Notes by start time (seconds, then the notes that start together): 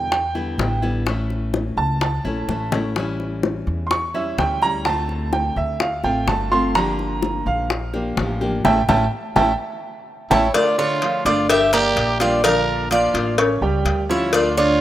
Already playing: E2 B2 D3 G3 B3 E4 G5
0.12 G5, muted nylon-string guitar stroke, high bongo
0.35 D3 G3 B3 E4, high bongo
0.58 A1 D3 G3 B3 E4, high bongo, low bongo
0.82 D3 G3 B3 E4, high bongo
1.06 E3 A3 C#4 E4, high bongo
1.30 high bongo
1.54 high bongo
1.77 C#2 A5
2.01 A5, muted nylon-string guitar stroke, high bongo
2.24 A#1 A3 C#4 E4, high bongo
2.48 A1 E3 A3 C#4 E4, high bongo
2.72 A3 C#4 E4, low bongo
2.96 E3 G3 C#4 E4, high bongo
3.20 high bongo
3.43 high bongo
3.67 E2
3.87 C6
3.91 C#6, muted nylon-string guitar stroke, high bongo
4.14 G3 C#4 E4 E5, high bongo
4.38 D2 E3 G3 C#4 E4 G5, high bongo, low bongo
4.62 G3 C#4 E4 A#5, high bongo
4.85 D3 A3 C4 F4 A5, high bongo
5.09 high bongo
5.33 G5, high bongo
5.56 D2 E5
5.80 F5, muted nylon-string guitar stroke, high bongo
6.04 A1 A3 C4 F4 G5, high bongo
6.27 G1 D3 A3 C4 F4 A5, high bongo, low bongo
6.52 A3 C4 F4 C6
6.75 D3 F3 A#3 D4 G4 A#5, high bongo
6.99 high bongo
7.22 high bongo
7.46 A#1 F5
7.70 muted nylon-string guitar stroke, high bongo
7.93 F3 A#3 D4 G4, high bongo
8.17 A1 F3 A#3 D4 G4, high bongo, low bongo
8.41 F3 A#3 D4 G4, high bongo
8.64 A1 A3 C#4 E4 E5 G5 A5, low bongo
8.88 A1 A3 C#4 E4 E5 G5 A5, low bongo
9.36 A1 A3 C#4 E4 E5 G5 A5, low bongo
10.30 A1 A3 C#4 E4 C#5 E5 G5 A5, low bongo
10.54 D3 A3 D4 F4 D5, cowbell
10.78 D3 D4 F4 C#5 D5
11.02 D3 F3 A3 D4 F4 F5, cowbell
11.25 G1 A3 D4 F4 D5 D6, cowbell
11.49 G4 E5, muted nylon-string guitar stroke, cowbell
11.73 A#3 G4 A#4 D5 A#5, cowbell
11.96 A#1, cowbell
12.20 F3 G3 A#3 D4 F4 G4 D5 F5, cowbell
12.43 D3 F3 A#3 D4 F4 A#4 D5 F5, cowbell
12.91 F3 A#3 D4 F4 D5 F5, cowbell
13.14 A1 A#3 D4 F4, cowbell
13.38 C#4 C#5 C#6, muted nylon-string guitar stroke, cowbell
13.61 C#2 G3 G4 G5
13.85 D2, cowbell
14.09 F3 G3 C#4 E4 F4 C#5 F5
14.32 D3 A3 D4 F4 D5, cowbell
14.57 D3 D4 F4 C#5 D5